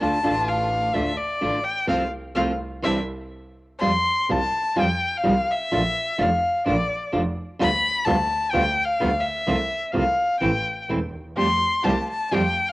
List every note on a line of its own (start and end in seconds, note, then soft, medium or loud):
0.00 0.20 D2 medium
0.00 0.17 D3 medium
0.00 0.20 A3 soft
0.00 0.18 A3 medium
0.00 0.17 D4 medium
0.00 0.21 D4 soft
0.00 0.21 F4 medium
0.00 0.18 F4 medium
0.00 0.50 A5 loud
0.23 0.91 A1 medium
0.23 0.33 D3 medium
0.23 0.33 A3 medium
0.23 0.91 A3 medium
0.23 0.33 D4 medium
0.23 0.92 D4 medium
0.23 0.33 F4 medium
0.23 0.92 F4 medium
0.48 0.96 F5 medium
0.94 1.15 D2 medium
0.94 1.11 D3 medium
0.94 1.11 A3 medium
0.94 1.15 A3 soft
0.94 1.11 D4 medium
0.94 1.15 D4 soft
0.94 1.11 F4 medium
0.94 1.15 F4 medium
0.94 1.19 E5 medium
1.17 1.66 D5 medium
1.41 1.61 A1 medium
1.41 1.58 D3 medium
1.41 1.58 A3 medium
1.41 1.62 A3 soft
1.41 1.58 D4 medium
1.41 1.62 D4 soft
1.41 1.58 F4 medium
1.41 1.62 F4 soft
1.64 1.88 G5 medium
1.87 2.06 C2 medium
1.87 2.03 F3 medium
1.87 2.03 A3 medium
1.87 2.04 A3 medium
1.87 2.03 C4 medium
1.87 2.04 C4 medium
1.87 2.04 F4 medium
1.87 2.04 F5 medium
2.35 2.54 C2 medium
2.35 2.51 F3 medium
2.35 2.51 A3 medium
2.35 2.52 A3 medium
2.35 2.51 C4 medium
2.35 2.52 C4 medium
2.35 2.52 F4 medium
2.35 2.51 F5 medium
2.82 3.02 C2 medium
2.82 2.99 E3 medium
2.82 2.99 G3 medium
2.82 2.99 C4 medium
2.82 3.00 C4 medium
2.82 3.00 D4 medium
2.82 3.00 E4 medium
2.82 3.00 E5 medium
3.80 4.02 F2 medium
3.80 3.90 F3 medium
3.80 3.90 G3 medium
3.80 3.91 C4 medium
3.80 3.91 F4 medium
3.80 4.33 C6 loud
4.29 4.49 C2 medium
4.29 4.38 F3 medium
4.29 4.38 G3 medium
4.29 4.38 C4 medium
4.29 4.39 F4 medium
4.29 4.81 A5 loud
4.76 4.98 F2 medium
4.76 4.85 F3 medium
4.76 4.86 G3 medium
4.76 4.86 C4 medium
4.76 4.86 F4 medium
4.76 5.19 G5 medium
5.17 5.53 F5 medium
5.24 5.45 C2 medium
5.24 5.33 F3 medium
5.24 5.33 G3 loud
5.24 5.34 C4 medium
5.24 5.34 F4 medium
5.51 6.24 E5 loud
5.71 5.92 A#1 medium
5.71 5.81 F3 loud
5.71 5.81 A3 medium
5.71 5.81 D4 loud
5.71 5.81 F4 medium
6.18 6.39 F1 medium
6.18 6.28 F3 medium
6.18 6.28 A3 medium
6.18 6.28 D4 medium
6.18 6.28 F4 medium
6.22 6.67 F5 medium
6.66 6.86 A#1 loud
6.66 6.75 F3 medium
6.66 6.75 A3 medium
6.66 6.75 D4 loud
6.66 6.75 F4 medium
6.66 7.11 D5 medium
7.12 7.33 F1 loud
7.12 7.22 F3 medium
7.12 7.22 A3 medium
7.12 7.22 D4 medium
7.12 7.22 F4 loud
7.59 7.80 D2 medium
7.59 7.68 D3 medium
7.59 7.69 G3 medium
7.59 7.69 B3 medium
7.59 7.69 F4 loud
7.59 8.06 B5 loud
8.05 8.26 D2 loud
8.05 8.15 D3 medium
8.05 8.15 G3 medium
8.05 8.16 B3 loud
8.05 8.16 F4 loud
8.05 8.53 A5 loud
8.51 8.73 D2 loud
8.51 8.62 D3 medium
8.51 8.62 G3 medium
8.51 8.62 B3 medium
8.51 8.62 F4 loud
8.51 8.86 G5 loud
8.85 9.21 F5 loud
9.00 9.20 D2 loud
9.00 9.09 D3 loud
9.00 9.09 G3 medium
9.00 9.09 B3 loud
9.00 9.09 F4 loud
9.20 9.93 E5 medium
9.47 9.67 C2 medium
9.47 9.56 C3 medium
9.47 9.56 F3 medium
9.47 9.56 A3 medium
9.47 9.56 C4 loud
9.47 9.56 F4 loud
9.92 10.14 C2 loud
9.92 10.02 C3 medium
9.92 10.02 F3 medium
9.92 10.03 A3 medium
9.92 10.02 C4 medium
9.92 10.03 F4 loud
9.92 10.40 F5 medium
10.40 10.62 A1 loud
10.40 10.50 E3 medium
10.40 10.50 A3 medium
10.40 10.50 C4 medium
10.40 10.51 E4 medium
10.40 10.85 G5 medium
10.89 11.10 E1 medium
10.89 10.98 E3 medium
10.89 10.98 A3 medium
10.89 10.99 C4 medium
10.89 10.99 E4 medium
11.13 11.36 D#2 soft
11.36 11.57 F2 medium
11.36 11.46 F3 medium
11.36 11.46 G3 medium
11.36 11.57 A3 medium
11.36 11.46 C4 medium
11.36 11.57 F4 medium
11.36 11.57 G4 medium
11.36 11.46 G4 medium
11.36 11.86 C6 loud
11.84 12.05 C2 medium
11.84 11.93 F3 medium
11.84 11.93 G3 medium
11.84 12.05 A3 medium
11.84 11.93 C4 medium
11.84 12.05 F4 medium
11.84 12.05 G4 medium
11.84 11.94 G4 medium
11.84 12.08 A5 medium
12.10 12.35 A5 medium
12.31 12.52 F2 loud
12.31 12.41 F3 medium
12.31 12.41 G3 medium
12.31 12.52 A3 medium
12.31 12.41 C4 medium
12.31 12.52 F4 medium
12.31 12.41 G4 medium
12.31 12.52 G4 medium
12.31 12.70 G5 medium
12.69 12.72 F5 loud